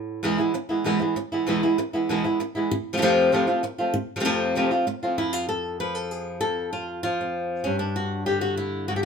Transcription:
Already playing: A2 B3 E4
0.23 E2 B2 E3 G#3 B3 E4
0.38 E3 G#3 B3 E4
0.54 muted nylon-string guitar stroke
0.69 E3 G#3 B3 E4
0.84 E2 B2 E3 G#3 B3 E4
1.00 E3 G#3 B3 E4
1.16 muted nylon-string guitar stroke
1.32 E3 G#3 B3 E4
1.47 E2 B2 E3 G#3 B3 E4
1.63 E3 G#3 B3 E4
1.78 muted nylon-string guitar stroke
1.93 E3 G#3 B3 E4
2.09 E2 B2 E3 G#3 B3 E4
2.24 E3 G#3 B3 E4
2.40 muted nylon-string guitar stroke
2.55 E3 G#3 B3 E4
2.71 muted nylon-string guitar stroke
2.93 C3 F3 A3 C4 F4
2.97 C3 F3 A3 C4 F4
3.02 F2 C3 F3 A3 C4 F4
3.32 F2 C3 F3 A3 C4 F4
3.47 F3 A3 C4 F4
3.63 muted nylon-string guitar stroke
3.78 F3 A3 C4 F4
3.94 muted nylon-string guitar stroke
4.16 C3 F3 A3 C4 F4
4.20 C3 F3 A3 C4 F4
4.25 F2 C3 F3 A3 C4 F4
4.55 F2 C3 F3 A3 C4 F4
4.71 F3 A3 C4 F4
4.87 muted nylon-string guitar stroke
5.03 F3 A3 C4 F4
5.18 F2 E4
5.33 F4
5.49 A4
5.80 F3 B4
5.95 A4
6.11 G#4
6.41 F2 A4
6.73 F4
7.03 F3 F4
7.21 C4
7.64 G2 C#4
7.79 D4
7.96 F#4
8.26 D3 G4
8.41 F#4
8.57 E4
8.88 G2 F#4
8.96 G4

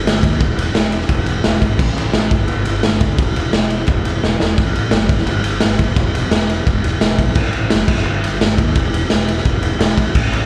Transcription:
0.04 G1, snare, ride
0.23 D#2, kick, ride
0.41 E1, kick, ride
0.56 E1, ride
0.73 E1, snare, ride
0.92 ride
1.01 snare
1.09 E1, kick, ride
1.26 E1, ride
1.44 E1, snare, ride
1.62 G#1, kick, ride
1.79 A1, kick, crash
1.96 A1, ride
2.13 A1, snare, ride
2.31 G1, kick, ride
2.48 G1, ride
2.65 G1, ride
2.83 G1, snare, ride
3.01 D2, kick, ride
3.19 E1, kick, ride
3.36 E1, ride
3.52 E1, snare, ride
3.70 ride
3.87 E1, kick, ride
4.05 E1, ride
4.23 E1, snare
4.40 E1, snare
4.58 A1, kick, ride
4.75 A1, ride
4.91 F#1, snare, ride
5.09 G1, kick, ride
5.18 snare
5.26 G1, ride
5.43 G1, ride
5.60 G1, snare, ride
5.78 F#1, kick, ride
5.96 E1, kick, ride
6.14 E1, ride
6.29 E1, snare, ride
6.50 ride
6.67 E1, kick, ride
6.84 E1, ride
7.00 E1, snare, ride
7.18 B1, kick, ride
7.35 A1, kick, crash
7.53 A1, ride
7.70 F#1, snare, ride
7.88 G1, kick, crash
7.97 snare
8.05 G1
8.22 G1, ride
8.41 G1, snare, ride
8.58 D#2, kick, ride
8.75 E1, kick, ride
8.93 E1, ride
9.10 E1, snare, ride
9.28 ride
9.38 snare
9.45 E1, kick, ride
9.62 E1, ride
9.78 E1, snare, ride
9.98 G#1, kick, ride
10.15 A1, kick, crash
10.32 A1, ride

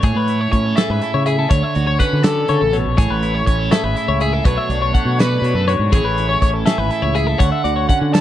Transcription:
Already playing: A3
0.03 A2 G#4 C#5, kick, closed hi-hat
0.15 A2 B4
0.28 E4, closed hi-hat
0.41 C#5
0.52 A2 C#4 C#5, kick, closed hi-hat
0.65 A4
0.77 G#4 A4 E5, snare, closed hi-hat
0.90 G#2 B4
1.02 E4 A4, closed hi-hat
1.14 C#3 C#5
1.26 G#4 E5, closed hi-hat
1.39 A4
1.50 D2 D3 C#5, kick, closed hi-hat
1.63 E5
1.75 D2 F#4 D5, closed hi-hat
1.87 C#5
1.99 C#4 B4 F#5, kick, closed hi-hat
2.13 D3
2.23 D3 A4 D5, snare, closed hi-hat
2.48 C#3 D3 C#5, closed hi-hat
2.61 A1 A4
2.73 B2 C#5, closed hi-hat
2.86 A#1
2.98 A1 A2 G#4 C#5, kick, closed hi-hat
3.10 A1 B4
3.23 E4, closed hi-hat
3.35 C#5
3.47 A1 C#4 C#5, kick, closed hi-hat
3.59 A4
3.71 G#4 A4 E5, snare, closed hi-hat
3.84 G#1 B4
3.96 E4 A4, closed hi-hat
4.08 C#2 C#5
4.20 G#4 E5, closed hi-hat
4.33 A4
4.45 B1 B2 F#3 A3 D4 F#4 B4 C#5, kick, closed hi-hat
4.58 E5
4.69 B1 D4 D5, closed hi-hat
4.82 C#5
4.94 A3 F#5, kick, closed hi-hat
5.05 B2
5.19 F#4 B4 D5, snare, closed hi-hat
5.42 B2 D4 C#5, closed hi-hat
5.54 F#2 A4
5.68 F#4 C#5, closed hi-hat
5.79 G#2
5.92 A1 A2 E3 C#4 E4 G#4 C#5, kick, closed hi-hat
5.97 G#4
6.04 A1 B4
6.18 E4, closed hi-hat
6.29 C#5
6.42 A1 C#4 C#5, kick, closed hi-hat
6.54 A4
6.66 G#4 A4 E5, snare, closed hi-hat
6.78 G#1 B4
6.91 E4 A4, closed hi-hat
7.02 C#2 C#5
7.15 G#4 E5, closed hi-hat
7.27 A4
7.39 D2 D3 C#5 F#5, kick, closed hi-hat
7.52 E5
7.64 D2 F#4 D5, closed hi-hat
7.76 C#5
7.89 C#4 F#5, kick, closed hi-hat
8.01 D3
8.13 A4 D5 A5, snare, closed hi-hat

